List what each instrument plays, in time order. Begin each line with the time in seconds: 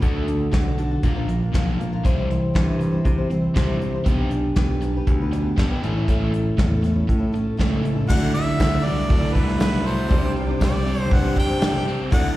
0.00 picked electric bass D2, steel-string acoustic guitar D3 D4 F#4 A4, kick, closed hi-hat
0.28 overdriven electric guitar D3 D4, closed hi-hat
0.52 picked electric bass B1, steel-string acoustic guitar D3 D4 F#4 A4, kick, snare, closed hi-hat
0.78 steel-string acoustic guitar D3 D4 F#4 A4, closed hi-hat
0.91 steel-string acoustic guitar D4 F#4 A4
1.03 picked electric bass A#1, steel-string acoustic guitar A#2 F3 A#3 D4 F4 A#4, kick, closed hi-hat
1.16 steel-string acoustic guitar A#3 D4 F4 A#4
1.28 overdriven electric guitar A#2 F3, steel-string acoustic guitar A#3 D4 F4 A#4, closed hi-hat
1.54 picked electric bass B1, steel-string acoustic guitar A#2 F3 A#3 D4 F4 A#4, kick, snare, closed hi-hat
1.79 overdriven electric guitar A#2 F3, steel-string acoustic guitar A#3 D4 F4 A#4, closed hi-hat
1.93 steel-string acoustic guitar A#3 D4 F4 A#4
2.05 picked electric bass C2, steel-string acoustic guitar C3 E3 G3 C4 E4 C5, kick, closed hi-hat
2.30 overdriven electric guitar C3 E3, closed hi-hat
2.54 picked electric bass G2, steel-string acoustic guitar C3 E3 G3 C4 E4 C5, kick, snare, closed hi-hat
2.79 overdriven electric guitar C3 E3, steel-string acoustic guitar G3 C4 E4 C5, closed hi-hat
2.92 steel-string acoustic guitar G3 C4 E4 C5
3.05 overdriven electric guitar C3 E3, picked electric bass C3, kick, closed hi-hat
3.18 steel-string acoustic guitar G3 C4 E4 C5
3.30 overdriven electric guitar C3 E3, steel-string acoustic guitar G3 C4 E4 C5, closed hi-hat
3.56 steel-string acoustic guitar C3 E3 G3 C4 E4 C5, picked electric bass C3, kick, snare, closed hi-hat
3.80 overdriven electric guitar C3 E3, steel-string acoustic guitar G3 C4 E4 C5, closed hi-hat
3.94 steel-string acoustic guitar G3 C4 E4 C5
4.06 picked electric bass B1, steel-string acoustic guitar B3 D4 G4 B4, kick, closed hi-hat
4.31 overdriven electric guitar B3 D4, closed hi-hat
4.56 picked electric bass B1, steel-string acoustic guitar B3 D4 G4 B4, kick, snare, closed hi-hat
4.82 steel-string acoustic guitar B3 D4 G4 B4, closed hi-hat
4.97 steel-string acoustic guitar D4 G4 B4
5.07 picked electric bass D2, overdriven electric guitar B3 D4, kick, closed hi-hat
5.21 steel-string acoustic guitar D4 G4 B4
5.32 steel-string acoustic guitar B3 D4 G4 B4, closed hi-hat
5.58 picked electric bass B1, steel-string acoustic guitar B3 D4 G4 B4, kick, snare, closed hi-hat
5.70 steel-string acoustic guitar D4 G4 B4
5.82 picked electric bass A1, overdriven electric guitar A2, steel-string acoustic guitar A3 C#4 E4 A4, closed hi-hat
5.95 steel-string acoustic guitar C#4 E4 A4
6.08 steel-string acoustic guitar A2 A3 C#4 E4 A4, kick, closed hi-hat
6.32 overdriven electric guitar A2 A3, closed hi-hat
6.58 picked electric bass E2, steel-string acoustic guitar A2 A3 C#4 E4 A4, kick, snare, closed hi-hat
6.81 overdriven electric guitar A2, steel-string acoustic guitar A3 C#4 E4 A4, snare, closed hi-hat
6.94 steel-string acoustic guitar C#4 E4 A4
7.07 overdriven electric guitar A2 A3, picked electric bass A2, kick, closed hi-hat
7.18 steel-string acoustic guitar C#4 E4 A4
7.32 overdriven electric guitar A2, steel-string acoustic guitar A3 C#4 E4 A4, closed hi-hat
7.57 picked electric bass C#2, steel-string acoustic guitar A2 A3 C#4 E4 A4, kick, snare, closed hi-hat
7.83 overdriven electric guitar A2, steel-string acoustic guitar A3 C#4 E4 A4, closed hi-hat
7.96 steel-string acoustic guitar C#4 E4 A4
8.07 picked electric bass D2, steel-string acoustic guitar D3 F#3 A3 D4 E4, grand piano E4 F#4 A4 D5, tonewheel organ D5 F#5 E6, harmonica F#5, kick, crash
8.20 steel-string acoustic guitar A3 D4 E4
8.33 steel-string acoustic guitar F#3 A3 E4, grand piano E4 F#4 A4 D5, harmonica E5, open hi-hat
8.45 steel-string acoustic guitar A3 D4 E4
8.57 picked electric bass D2, steel-string acoustic guitar D3 F#3 A3 D4 E4, kick, snare, open hi-hat, tambourine
8.82 picked electric bass C2, steel-string acoustic guitar F#3 A3 D4 E4, harmonica D5, open hi-hat
9.10 picked electric bass D2, overdriven electric guitar D4, grand piano E4 F#4 A4 D5, kick, open hi-hat
9.19 steel-string acoustic guitar A3 D4 E4
9.33 picked electric bass C2, steel-string acoustic guitar F#3 A3 D4 E4, harmonica B4, kick, open hi-hat
9.45 steel-string acoustic guitar A3 D4 E4, snare
9.58 steel-string acoustic guitar D3 F#3 A3 D4 E4, harmonica B4, snare, open hi-hat, tambourine
9.82 steel-string acoustic guitar F#3 A3 D4 E4
9.86 harmonica C5, open hi-hat
10.08 picked electric bass C2, steel-string acoustic guitar C3 G3 C4 D4 G4, grand piano D4 G4 C5, tonewheel organ C5 G5 D6, kick, open hi-hat
10.12 overdriven electric guitar C3, grand piano D5
10.21 steel-string acoustic guitar C4 D4 G4
10.35 steel-string acoustic guitar G3 C4 D4 G4, grand piano D4 G4, open hi-hat
10.39 grand piano C5 D5
10.48 steel-string acoustic guitar C4 D4 G4
10.60 picked electric bass C2, steel-string acoustic guitar C3 G3 C4 D4 G4, kick, snare, open hi-hat, tambourine
10.64 harmonica D5
10.84 steel-string acoustic guitar G3 C4 D4 G4, open hi-hat
11.01 harmonica C5
11.11 picked electric bass G2, grand piano D4 G4 C5 D5, overdriven electric guitar D4, harmonica F#5, kick, open hi-hat
11.21 steel-string acoustic guitar C4 D4 G4
11.36 picked electric bass C3, steel-string acoustic guitar G3 C4 D4 G4, harmonica G5, kick, open hi-hat
11.45 steel-string acoustic guitar C4 D4 G4
11.59 steel-string acoustic guitar C3 G3 C4 D4 G4, snare, open hi-hat, tambourine
11.84 steel-string acoustic guitar G3 C4 D4 G4, open hi-hat
12.10 picked electric bass D2, steel-string acoustic guitar D3 F#3 A3 D4 E4, grand piano E4 F#4 A4 D5, harmonica F#5, kick, crash
12.14 tonewheel organ D5 F#5 E6
12.22 steel-string acoustic guitar A3 D4 E4